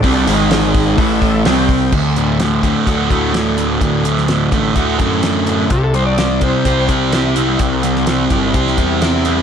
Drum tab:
CC |----------------|x---------------|----------------|----------------|
HH |o-o-o-o-o-o-o-o-|--x-x-x-x-x-x-x-|x-x-x-x-x-x-x-x-|x-x-x-x-x-x-x-x-|
SD |----o-------o---|----o-------o---|---oo-------o---|----o-------o---|
BD |o-----o-o-o---o-|o-----o-o-o-----|o-----o-o-o-----|o-----o-o-o-----|

CC |----------------|
HH |x-x-x-x-x-x-x-x-|
SD |---oo----o--o---|
BD |o-----o-o-o-----|